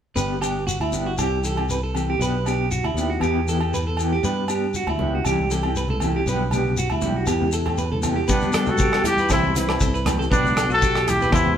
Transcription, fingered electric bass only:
0.16 0.76 G1 medium
0.80 0.91 D2 medium
0.93 1.16 G1 medium
1.19 2.16 C2 medium
2.19 2.80 B1 medium
2.84 2.94 D2 medium
2.94 3.18 D#2 medium
3.21 4.19 E2 medium
4.24 4.84 G2 medium
4.87 4.98 D2 medium
5.00 5.23 C#2 medium
5.25 6.22 C2 medium
6.26 6.86 B1 medium
6.91 7.02 D2 medium
7.03 7.26 B1 medium
7.27 8.25 E2 medium
8.29 8.52 G2 medium
8.54 8.66 G2 medium
8.68 9.26 G2 medium
9.30 9.77 C2 medium
9.81 10.27 C2 medium
10.31 10.54 B1 medium
10.56 10.68 B1 medium
10.69 11.28 B1 medium
11.33 11.58 E2 medium

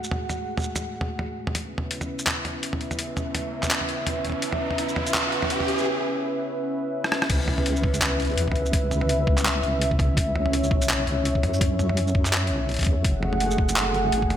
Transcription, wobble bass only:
7.30 8.01 C#2 loud
8.02 8.37 C#2 medium
8.37 8.57 E2 loud
8.55 9.62 C#2 medium
9.63 10.73 C#2 medium
10.71 11.06 B1 medium
11.07 11.45 C#2 loud
11.43 12.52 F#2 medium
12.51 12.88 B1 loud
12.87 13.03 E2 medium
13.05 13.76 F#1 loud
13.77 14.11 F#1 medium
14.12 14.32 G#1 loud
14.30 14.37 F#1 medium

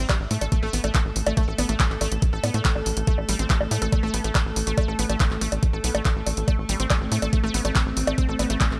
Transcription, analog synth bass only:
0.20 0.27 A1 medium
0.31 0.38 A2 loud
0.41 0.48 A1 medium
0.63 0.70 A1 medium
0.73 0.80 A1 loud
0.84 0.91 A1 medium
1.05 1.12 A1 medium
1.16 1.23 A1 loud
1.27 1.34 A1 medium
1.48 1.55 A1 medium
1.58 1.65 A1 loud
1.69 1.76 A1 medium
1.90 1.97 A1 medium
2.01 2.08 A1 loud
2.12 2.19 A1 medium
2.33 2.40 A1 medium
2.44 2.51 A2 loud
2.54 2.61 A2 medium
2.75 2.83 A1 medium
2.86 2.93 A1 loud
2.97 3.04 A1 medium
3.18 3.25 A1 medium
3.29 3.36 A1 loud
3.39 3.46 A1 medium
3.61 3.68 A1 medium
3.71 3.78 A2 loud
3.82 3.89 A1 medium
4.03 4.10 A1 medium
4.14 4.21 A1 loud
4.24 4.31 A1 medium
4.46 4.53 A1 medium
4.56 4.63 A1 loud
4.67 4.74 A1 medium
4.88 4.95 A1 medium
4.99 5.06 A1 loud
5.09 5.17 A1 medium
5.31 5.38 A1 medium
5.41 5.48 A1 loud
5.52 5.59 A1 medium
5.73 5.80 A1 medium
5.84 5.91 B1 loud
5.95 6.02 A1 medium
6.16 6.23 A1 medium
6.27 6.34 A1 loud
6.37 6.44 A1 medium
6.58 6.65 A1 medium
6.69 6.76 A1 loud
6.80 6.87 A1 loud
7.01 7.08 A1 medium
7.12 7.19 A2 loud
7.22 7.29 A1 medium
7.44 7.51 A1 medium
7.54 7.61 A1 loud
7.65 7.72 A1 loud
7.86 7.93 A1 medium
7.97 8.04 A1 loud
8.07 8.14 A1 medium
8.29 8.36 A1 medium
8.39 8.46 A1 loud
8.50 8.57 A1 medium
8.71 8.78 A1 medium

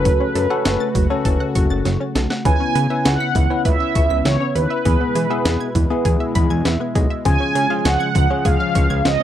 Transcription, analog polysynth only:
0.00 1.51 B4 medium
2.46 3.07 G#5 loud
3.05 3.61 F#5 loud
3.65 4.27 E5 loud
4.25 4.56 C#5 medium
4.55 6.31 B4 medium
7.25 7.87 G#5 loud
7.85 8.47 F#5 loud
8.45 9.07 F5 loud
9.05 9.23 D#5 loud

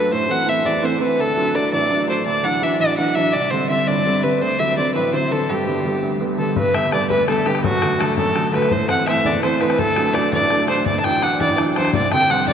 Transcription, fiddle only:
0.00 0.11 B4 medium
0.13 0.32 C5 medium
0.31 0.50 F#5 medium
0.48 0.67 E5 medium
0.66 0.86 D5 medium
0.84 1.01 C5 medium
1.02 1.21 B4 medium
1.20 1.57 A4 medium
1.55 1.72 D5 medium
1.73 2.06 D5 medium
2.09 2.25 C5 medium
2.26 2.45 D5 medium
2.44 2.65 F#5 medium
2.63 2.80 E5 medium
2.80 2.97 D5 medium
2.97 3.16 F#5 medium
3.15 3.33 E5 medium
3.32 3.52 D5 medium
3.50 3.69 C5 medium
3.69 3.89 E5 medium
3.87 4.25 D5 medium
4.23 4.43 B4 medium
4.41 4.60 C5 medium
4.59 4.76 E5 medium
4.77 4.94 D5 medium
4.94 5.11 B4 medium
5.14 5.33 C5 medium
5.31 5.50 A4 medium
5.49 6.20 G4 medium
6.39 6.55 A4 medium
6.57 6.76 B4 medium
6.74 6.92 E5 medium
6.93 7.09 D5 medium
7.10 7.27 B4 medium
7.28 7.47 A4 medium
7.46 7.63 G4 medium
7.64 8.01 F#4 medium
7.99 8.16 A4 medium
8.17 8.51 A4 medium
8.54 8.73 B4 medium
8.72 8.88 C5 medium
8.89 9.06 F#5 medium
9.07 9.27 E5 medium
9.25 9.43 D5 medium
9.43 9.62 C5 medium
9.60 9.80 B4 medium
9.78 10.15 A4 medium
10.14 10.32 D5 medium
10.33 10.66 D5 medium
10.69 10.85 C5 medium
10.86 10.99 D5 medium
11.00 11.05 A5 medium
11.04 11.24 G5 medium
11.22 11.40 F#5 medium
11.41 11.57 D5 medium
11.78 11.93 C5 medium
11.95 12.11 D5 medium
12.13 12.32 G5 loud
12.30 12.47 F#5 medium
12.48 12.53 D5 medium

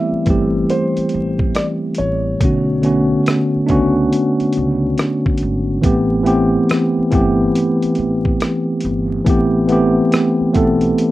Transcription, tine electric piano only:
0.00 0.26 E3 medium
0.00 0.28 G3 medium
0.00 0.27 A3 medium
0.00 0.17 B3 medium
0.00 0.29 C4 medium
0.00 0.18 E4 medium
0.00 0.30 G4 medium
0.26 1.75 E3 medium
0.26 1.76 G3 medium
0.26 1.76 A3 medium
0.26 1.77 C4 medium
0.30 1.78 G4 medium
2.40 2.78 D3 medium
2.40 2.79 A3 medium
2.40 2.79 B3 medium
2.40 2.80 C#4 medium
2.45 2.81 F#4 medium
2.82 3.59 D3 medium
2.82 3.59 A3 medium
2.82 3.60 B3 medium
2.82 3.60 C#4 medium
2.86 3.61 F#4 medium
3.67 5.18 A3 medium
3.67 5.19 B3 medium
3.67 5.19 C#4 medium
3.67 5.17 D4 medium
3.71 5.20 F#4 medium
5.82 6.21 E3 medium
5.82 6.21 A3 medium
5.82 6.22 B3 medium
5.82 6.22 C4 medium
5.86 6.23 G4 medium
6.23 7.01 E3 medium
6.23 7.01 A3 medium
6.23 7.02 B3 medium
6.23 7.02 C4 medium
6.27 7.03 G4 medium
7.10 8.61 E3 medium
7.10 8.61 A3 medium
7.10 8.62 B3 medium
7.10 8.62 C4 medium
7.15 8.63 G4 medium
9.25 9.64 E3 medium
9.25 9.64 A3 medium
9.25 9.65 B3 medium
9.25 9.65 C4 medium
9.30 9.66 G4 medium
9.67 10.44 E3 medium
9.67 10.45 A3 medium
9.67 10.45 B3 medium
9.67 10.46 C4 medium
9.72 10.47 G4 medium
10.53 11.12 E3 medium
10.53 11.12 A3 medium
10.53 11.12 B3 medium
10.53 11.12 C4 medium
10.57 11.12 A4 loud

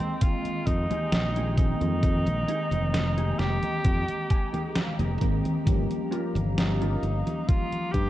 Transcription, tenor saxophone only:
0.00 0.23 C4 medium
0.22 0.68 F4 loud
0.66 1.57 D#4 loud
1.58 3.41 D#4 loud
3.40 5.21 G4 loud
6.58 7.50 D#4 medium
7.48 7.94 F4 loud
7.92 8.10 G4 loud

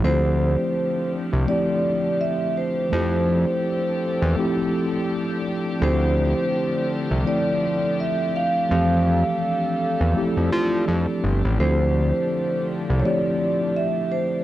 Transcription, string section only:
0.02 2.89 D3 medium
0.02 2.89 F3 medium
0.02 2.89 A3 medium
0.02 14.44 C4 medium
0.02 14.44 D4 medium
0.02 14.44 G4 medium
2.93 5.79 F3 medium
2.93 5.79 A4 medium
5.81 8.68 D3 medium
5.81 8.68 F3 medium
5.81 8.68 A3 medium
8.70 11.57 G3 medium
8.70 11.57 A4 medium
11.60 14.44 D3 medium
11.60 14.44 F3 medium
11.60 14.44 A3 medium

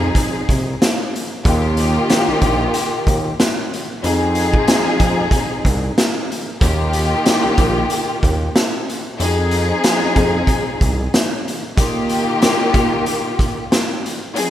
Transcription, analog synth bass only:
0.00 0.10 F2 medium
0.49 0.75 C2 medium
1.45 1.98 D#2 loud
2.28 2.34 A#1 medium
2.42 2.68 A#1 medium
3.07 3.33 D#2 medium
4.04 4.56 F2 loud
4.86 4.92 F2 medium
5.00 5.26 F2 medium
5.65 5.91 C2 medium
6.62 7.14 D#2 loud
7.44 7.50 A#1 medium
7.58 7.85 A#1 medium
8.23 8.49 D#2 medium
9.20 9.72 F2 loud
10.02 10.08 F2 soft
10.16 10.43 F2 medium
10.81 11.07 C2 medium

